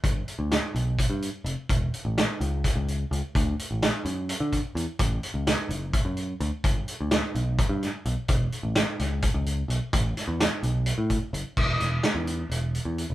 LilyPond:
<<
  \new Staff \with { instrumentName = "Picked electric bass" } { \clef bass \time 7/8 \key e \dorian \tempo 4 = 128 g,,8 r16 d,8 r16 b,,8. g,8 r16 f,,16 r16 | e,,8 r16 a,,8 r16 cis,8. cis,8. cis,16 r16 | d,8 r16 a,,8 r16 fis,8. d8 r16 e,16 r16 | a,,8 r16 cis,8 r16 fis,,8. fis,8. d,16 r16 |
g,,8 r16 d,8 r16 b,,8. g,8 r16 b,,16 r16 | e,,8 r16 a,,8 r16 cis,8. cis,8. b,,16 r16 | a,,8 r16 e,8 r16 b,,8. a,8 r16 fis,,16 r16 | e,,8 e,,8 r16 e,8. e,,8. e,8 e,,16 | }
  \new DrumStaff \with { instrumentName = "Drums" } \drummode { \time 7/8 <hh bd>8 hh8 <hh sn>8 hh8 <hh bd>8 hh8 hh8 | <hh bd>8 hh8 <hh sn>8 hh8 <hh bd sn>8 hh8 hh8 | <hh bd>8 hh8 <hh sn>8 hh8 hh8 <hh bd>8 hh8 | <hh bd>8 hh8 <hh sn>8 hh8 <hh bd>8 hh8 hh8 |
<hh bd>8 hh8 <hh sn>8 hh8 <hh bd>8 <hh sn>8 hh8 | <hh bd>8 hh8 <hh sn>8 <hh sn>8 <hh bd>8 hh8 hh8 | <hh bd>8 <hh sn>8 <hh sn>8 hh8 hh8 <hh bd>8 hh8 | <cymc bd>8 <hh sn>8 <hh sn>8 hh8 hh8 hh8 hh8 | }
>>